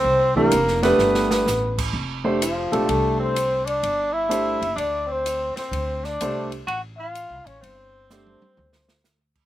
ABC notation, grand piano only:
X:1
M:4/4
L:1/8
Q:"Swing" 1/4=127
K:Gmix
V:1 name="Grand piano"
z [E,A,DG] z [A,DGB]3 z2 | z [A,DGc] z [A,DGA]3 z2 | z2 [A,DGc] z4 z | z2 [A,DGc] z4 z |
z2 [A,DGc] z4 z |]